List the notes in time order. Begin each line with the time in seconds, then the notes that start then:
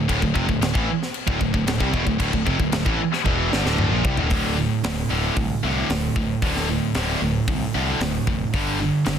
0.08 D1 D2 A2, kick, crash
0.21 D1 D2 A2, kick
0.34 F1 F2 C3, kick
0.48 D1 D2 A2, kick
0.61 D1 D2 A2, snare, crash
0.74 A1 A2 E3, kick
1.03 snare
1.14 crash
1.27 D1 D2 A2, kick
1.41 D1 D2 A2, kick
1.54 D1 D2 A2, kick
1.67 D1 D2 A2, snare, crash
1.80 C2 C3 G3, kick
1.93 E1 E2 B2, kick
2.06 D1 D2 A2, kick
2.20 D1 D2 A2, kick, crash
2.33 D1 D2 A2, kick
2.46 F1 F2 C3, kick
2.59 D1 D2 A2, kick
2.72 D1 D2 A2, snare, crash
2.86 A1 A2 E3, kick
3.13 snare
3.25 E1 E2 B2 E3, kick
3.51 G1 G2 D3, snare
3.65 D1 D2 A2 D3, snare
3.78 mid tom
3.91 A#1 A#2 F3
4.04 C2 C3 G3, kick
4.17 D1 D2 A2, floor tom
4.30 D1 D2 A2 D3, kick, open hi-hat
4.58 D2 A2
4.84 D1 D2 A2, snare, open hi-hat
5.10 D1 D2 A2 D3
5.36 C2 D2 A2, kick, open hi-hat
5.63 C2 D2 A2 D3
5.90 D1 D2 A2, snare, open hi-hat
6.16 D1 D2 A2, kick
6.42 D1 D2 A2 D3, kick, open hi-hat
6.57 snare
6.69 D2 A2
6.94 D1 D2 A2 D3, snare, open hi-hat
7.22 D1 D2 A2
7.48 C2 D2 A2, kick, open hi-hat
7.74 C2 D2 A2 D3
8.00 D1 D2 A2, snare, open hi-hat
8.27 F1 D2 A2, kick
8.54 G1 G2 D3 G3, kick, open hi-hat
8.80 G2 D3
9.06 G1 G2 D3, snare, open hi-hat